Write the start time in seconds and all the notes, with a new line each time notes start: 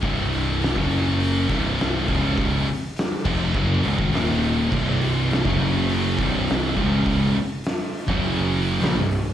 0.02 C1 C2 G2 C3, kick, open hi-hat
0.33 open hi-hat
0.62 snare, open hi-hat
0.75 F#1 F#2 C#3 F#3, kick
0.91 open hi-hat
1.20 open hi-hat
1.49 C1 C2 G2 C3, kick, open hi-hat
1.79 snare, open hi-hat
1.96 snare
2.07 C#1 C#2 G#2 C#3, kick, open hi-hat
2.38 kick, open hi-hat
2.67 open hi-hat
2.96 snare, open hi-hat
3.24 F1 F2 C3 F3, kick, crash
3.53 F#1 F#2 C#3 F#3, kick
3.83 C#1 C#2 G#2, open hi-hat
3.98 G#1 G#2 D#3, kick
4.12 D#1 D#2 A#2 D#3, snare, open hi-hat
4.30 snare
4.42 open hi-hat
4.71 C1 C2 G2 C3, kick, crash
5.01 open hi-hat
5.31 snare, open hi-hat
5.44 F#1 F#2 C#3 F#3, kick
5.60 open hi-hat
5.89 open hi-hat
6.18 C1 C2 G2 C3, kick, open hi-hat
6.48 snare, open hi-hat
6.66 snare
6.76 C#1 C#2 G#2 C#3, kick, open hi-hat
7.06 kick, open hi-hat
7.35 open hi-hat
7.64 snare, open hi-hat
7.94 open hi-hat
8.07 F#1 F#2 C#3 F#3, kick
8.23 open hi-hat
8.52 open hi-hat
8.80 A#1 A#2 F3, snare, open hi-hat
8.96 C1 C2 G2, snare
9.11 open hi-hat